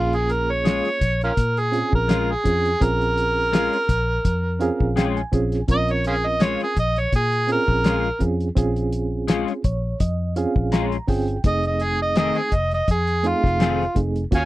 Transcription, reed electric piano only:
0.00 0.98 A#3 medium
0.00 0.98 C#4 medium
0.00 0.98 F4 medium
0.00 0.98 G#4 medium
1.72 2.26 C4 medium
1.72 2.26 C#4 medium
1.72 2.27 F4 medium
1.72 2.27 G#4 medium
2.44 2.71 C4 medium
2.44 2.72 C#4 medium
2.44 2.72 F4 medium
2.44 2.72 G#4 medium
2.81 3.86 C4 medium
2.81 3.86 C#4 medium
2.81 3.86 F4 medium
2.81 3.87 G#4 medium
4.60 5.14 C4 medium
4.60 5.14 C#4 medium
4.60 5.15 F4 medium
4.60 5.15 G#4 loud
4.60 4.94 F5 medium
4.96 5.15 G5 medium
5.16 5.65 G#5 medium
5.32 5.59 C4 medium
5.32 5.60 C#4 medium
5.32 5.60 F4 medium
5.32 5.60 G#4 loud
5.68 6.73 C4 medium
5.68 6.73 C#4 medium
5.68 6.74 F4 medium
5.68 6.74 A#4 medium
7.47 8.02 C4 medium
7.47 8.02 C#4 medium
7.47 8.02 F4 medium
7.47 8.03 G#4 medium
8.19 8.47 C4 medium
8.19 8.47 C#4 medium
8.19 8.47 F4 medium
8.19 8.48 G#4 medium
8.56 9.61 C4 medium
8.56 9.61 C#4 medium
8.56 9.62 F4 medium
8.56 9.62 G#4 loud
9.65 9.98 C#5 medium
10.00 10.34 D#5 medium
10.36 10.90 C4 medium
10.36 10.90 C#4 medium
10.36 10.91 F4 medium
10.36 10.91 G#4 medium
10.36 10.70 F5 medium
10.73 11.06 A#5 medium
11.08 11.35 C4 medium
11.08 11.35 C#4 medium
11.08 11.36 F4 medium
11.08 11.36 G#4 medium
11.08 11.42 G5 medium
11.44 12.49 A3 medium
11.44 12.49 C4 medium
11.44 12.50 D#4 medium
11.44 12.50 G#4 medium
13.23 13.78 A3 medium
13.23 13.78 C4 medium
13.23 13.78 D#4 medium
13.23 13.78 G#4 medium
13.95 14.23 A3 medium
13.95 14.23 C4 medium
13.95 14.23 D#4 medium
13.95 14.23 G#4 medium
14.31 14.45 A#3 medium
14.31 14.45 C#4 medium
14.31 14.45 F4 medium
14.31 14.45 F#4 medium

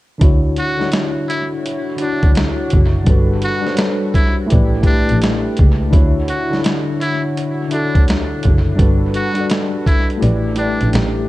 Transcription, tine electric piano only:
0.18 0.53 D3 medium
0.18 0.54 D4 medium
0.18 0.54 E4 medium
0.23 0.55 F#4 medium
0.23 0.56 C#5 medium
0.77 1.53 D3 medium
0.77 1.53 D4 medium
0.77 1.54 E4 medium
0.82 1.55 F#4 medium
0.82 1.56 C#5 medium
1.96 2.65 D3 medium
1.96 2.65 D4 medium
1.96 2.66 E4 medium
2.01 2.67 F#4 medium
2.01 2.68 C#5 medium
3.04 3.39 G3 medium
3.04 3.40 D4 medium
3.04 3.40 F#4 medium
3.09 3.41 A4 medium
3.09 3.42 B4 loud
3.61 4.37 G3 medium
3.61 4.38 D4 medium
3.61 4.39 F#4 medium
3.66 4.40 A4 medium
3.66 3.71 C5 medium
3.74 4.44 C#5 medium
4.46 4.79 A3 medium
4.46 4.80 E4 medium
4.46 4.81 G4 medium
4.51 4.81 B4 medium
4.51 4.82 D5 medium
4.81 5.50 A3 medium
4.81 5.51 E4 medium
4.81 5.51 G4 medium
4.86 5.52 B4 medium
4.86 5.53 D5 medium
5.90 6.24 D3 medium
5.90 6.25 D4 medium
5.90 6.26 E4 medium
5.94 6.27 F#4 medium
5.94 6.28 C#5 loud
6.50 7.25 D3 medium
6.50 7.25 D4 medium
6.50 7.26 E4 medium
6.54 7.27 F#4 medium
6.54 7.28 C#5 medium
7.68 8.36 D3 medium
7.68 8.37 D4 medium
7.68 8.38 E4 medium
7.73 8.38 F#4 medium
7.73 8.39 A4 medium
8.75 9.10 G3 medium
8.75 9.11 D4 medium
8.75 9.11 F#4 medium
8.79 9.12 A4 medium
8.79 9.13 B4 medium
9.34 10.10 G3 medium
9.34 10.11 D4 medium
9.34 10.11 F#4 medium
9.38 10.12 A4 medium
9.38 10.13 D5 medium
10.18 10.50 A3 medium
10.18 10.51 E4 medium
10.18 10.52 G4 medium
10.22 10.53 B4 medium
10.22 10.53 D5 loud
10.55 11.22 A3 medium
10.55 11.23 E4 medium
10.55 11.24 G4 medium
10.59 11.25 B4 medium
10.59 11.26 D5 medium

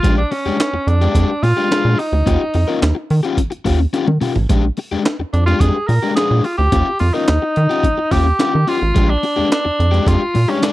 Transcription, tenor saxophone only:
0.00 0.17 F4 loud
0.18 0.33 D4 medium
0.31 0.89 C#4 loud
0.88 1.45 D4 medium
1.43 2.01 F4 loud
1.99 3.11 D#4 medium
5.33 5.45 D4 medium
5.46 5.61 F4 loud
5.60 5.89 G#4 loud
5.87 6.15 A#4 medium
6.15 6.46 G#4 loud
6.44 6.57 F4 medium
6.57 6.97 G4 loud
7.00 7.15 F4 medium
7.14 8.13 D#4 loud
8.12 8.70 G4 loud
8.68 9.11 F4 medium
9.10 9.51 D4 medium
9.52 10.09 D4 loud
10.08 10.51 F4 medium
10.49 10.65 C#4 medium
10.64 10.73 D4 medium

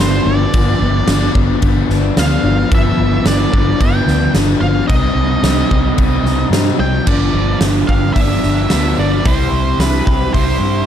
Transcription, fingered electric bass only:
0.00 0.19 G1 medium
0.25 0.45 G1 medium
0.54 0.74 G1 loud
0.80 1.00 G1 loud
1.07 1.27 G1 medium
1.36 1.55 G1 medium
1.62 1.82 G1 loud
1.89 2.09 G1 medium
2.17 2.36 D2 medium
2.43 2.63 G1 medium
2.71 2.91 G1 loud
2.97 3.17 G1 medium
3.24 3.45 G1 medium
3.54 3.73 G1 medium
3.80 4.00 G1 loud
4.07 4.27 D2 medium
4.34 4.54 G1 medium
4.60 4.80 G1 medium
4.89 5.09 C2 medium
5.15 5.35 C2 medium
5.43 5.62 C2 loud
5.71 5.91 C2 medium
5.98 6.17 C2 loud
6.23 6.43 C2 medium
6.50 6.70 G2 medium
6.79 6.99 C2 medium
7.07 7.29 G1 medium
7.34 7.56 G1 medium
7.61 7.83 G1 medium
7.89 8.11 G1 medium
8.16 8.38 G1 medium
8.44 8.65 G1 medium
8.72 8.93 D2 medium
8.98 9.20 G1 medium
9.25 9.47 C2 loud
9.52 9.74 C2 medium
9.78 10.00 C2 medium
10.06 10.28 C2 medium
10.35 10.56 C2 loud
10.60 10.82 G2 medium

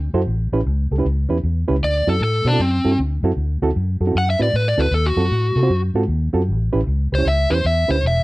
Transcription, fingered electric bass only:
0.14 0.24 F#2 medium
0.27 0.46 A1 medium
0.52 0.63 A1 medium
0.66 0.85 C#2 loud
0.91 1.02 C#2 medium
1.05 1.24 C#2 loud
1.29 1.40 E2 medium
1.43 1.63 E2 medium
1.69 1.80 C#2 medium
1.83 2.02 D2 medium
2.07 2.18 F#2 medium
2.21 2.40 A2 medium
2.45 2.56 B2 medium
2.59 2.79 F#2 medium
2.85 2.96 G2 medium
2.99 3.18 D2 medium
3.23 3.34 F#2 medium
3.37 3.56 D2 medium
3.62 3.73 D2 medium
3.76 3.95 F#2 medium
4.00 4.12 F#2 medium
4.15 4.34 F#2 medium
4.40 4.51 A2 medium
4.54 4.73 A2 medium
4.78 4.89 D2 medium
4.91 5.11 D#2 loud
5.16 5.28 F#2 medium
5.31 5.50 A2 medium
5.56 5.67 C3 medium
5.70 5.89 F#2 medium
5.94 6.05 G#2 medium
6.08 6.28 D#2 medium
6.34 6.50 F#2 medium
6.49 6.68 A1 medium
6.74 6.84 A1 medium
6.87 7.06 C#2 medium
7.12 7.23 C#2 medium
7.26 7.45 C#2 medium
7.50 7.61 E2 medium
7.65 7.84 E2 medium
7.89 8.00 D2 medium
8.03 8.22 E1 medium

